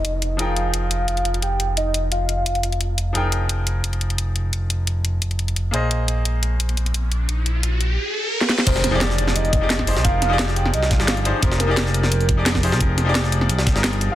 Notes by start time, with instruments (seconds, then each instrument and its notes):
Already playing: analog synth bass F1, grand piano F3 D#4 G#4 A#4 G5, soft synth lead D#5, downlifter
0.05 closed hi-hat
0.22 closed hi-hat
0.37 grand piano F3 D#4 G#4 A#4, closed hi-hat
0.42 grand piano G5
0.57 closed hi-hat
0.74 closed hi-hat
0.91 closed hi-hat
1.08 closed hi-hat
1.17 closed hi-hat
1.25 closed hi-hat
1.34 closed hi-hat
1.42 soft synth lead G5, closed hi-hat
1.60 closed hi-hat
1.77 soft synth lead D#5, closed hi-hat
1.94 closed hi-hat
2.12 soft synth lead F5, closed hi-hat
2.29 closed hi-hat
2.46 closed hi-hat
2.55 closed hi-hat
2.63 closed hi-hat
2.72 closed hi-hat
2.81 closed hi-hat
2.98 closed hi-hat
3.13 analog synth bass F1, grand piano F3 D#4 G#4 A#4, closed hi-hat
3.17 grand piano G5
3.32 closed hi-hat
3.49 closed hi-hat
3.67 closed hi-hat
3.84 closed hi-hat
3.93 closed hi-hat
4.01 closed hi-hat
4.10 closed hi-hat
4.18 closed hi-hat
4.36 closed hi-hat
4.53 closed hi-hat
4.70 closed hi-hat
4.87 closed hi-hat
5.05 closed hi-hat
5.22 closed hi-hat
5.31 closed hi-hat
5.39 closed hi-hat
5.48 closed hi-hat
5.56 closed hi-hat
5.71 analog synth bass A#1, grand piano A#3 G#4 C5, closed hi-hat
5.76 grand piano D#5
5.91 closed hi-hat, riser
6.08 closed hi-hat
6.25 closed hi-hat
6.43 closed hi-hat
6.60 closed hi-hat
6.69 closed hi-hat
6.77 closed hi-hat
6.86 closed hi-hat
6.94 closed hi-hat
7.12 closed hi-hat
7.29 closed hi-hat
7.46 closed hi-hat
7.63 closed hi-hat
7.81 closed hi-hat
8.41 snare
8.49 snare
8.58 snare
8.66 analog synth bass F1, grand piano F3 D#4 G4 G#4 A#4, soft synth lead C5, kick, closed hi-hat, crash, impact
8.76 snare
8.84 snare, closed hi-hat
8.91 grand piano F3 D#4 G4 G#4
8.95 grand piano D5
9.01 soft synth lead D5, snare, closed hi-hat
9.10 snare
9.18 closed hi-hat
9.27 snare
9.36 soft synth lead D#5, closed hi-hat
9.45 closed hi-hat
9.53 kick, closed hi-hat
9.61 grand piano F3 D#4 G4 G#4 D5
9.70 snare, closed hi-hat
9.79 kick, snare
9.86 grand piano F3 D#4 G4 G#4 C5, closed hi-hat, open hi-hat
9.96 analog synth bass C2, snare
10.03 analog synth bass F1, grand piano F3 D#4 G4 G#4 A#4, soft synth lead F5, kick, closed hi-hat
10.22 snare, closed hi-hat
10.29 grand piano F3 D#4 G4 G#4
10.33 grand piano D5
10.39 snare, closed hi-hat
10.48 snare
10.56 soft synth lead G5, closed hi-hat
10.66 snare
10.74 analog synth bass C2, soft synth lead D#5, closed hi-hat
10.83 snare
10.91 soft synth lead F5, kick, snare, closed hi-hat
10.99 analog synth bass G1, grand piano F3 D#4 G4 G#4 D5, snare
11.08 snare, closed hi-hat
11.17 closed hi-hat
11.24 grand piano F3 D#4 G4 G#4 C5, soft synth lead D5, closed hi-hat
11.41 analog synth bass F1, grand piano F3 D#4 G4 G#4 A#4, soft synth lead C5, kick, closed hi-hat
11.52 snare
11.60 soft synth lead A#4, snare, closed hi-hat
11.67 grand piano F3 D#4 G4 G#4
11.71 grand piano D5
11.77 snare, closed hi-hat
11.86 snare
11.94 closed hi-hat
12.03 snare
12.12 closed hi-hat
12.21 closed hi-hat
12.29 kick, closed hi-hat
12.37 grand piano F3 D#4 G4 G#4 D5
12.46 snare, closed hi-hat
12.55 kick, snare
12.62 grand piano F3 D#4 G4 G#4 C5, closed hi-hat, open hi-hat
12.72 analog synth bass C2, snare
12.80 analog synth bass F1, grand piano F3 D#4 G4 G#4 A#4, kick, closed hi-hat
12.98 snare, closed hi-hat
13.05 grand piano F3 D#4 G4 G#4
13.09 grand piano D5
13.15 snare, closed hi-hat
13.24 snare
13.32 closed hi-hat
13.41 snare
13.49 analog synth bass C2, closed hi-hat
13.59 snare
13.67 kick, snare, closed hi-hat
13.73 analog synth bass G1, grand piano F3 D#4 G4 G#4, snare
13.78 grand piano A#4
13.84 snare, closed hi-hat
13.93 closed hi-hat
14.01 closed hi-hat
14.12 soft synth lead F5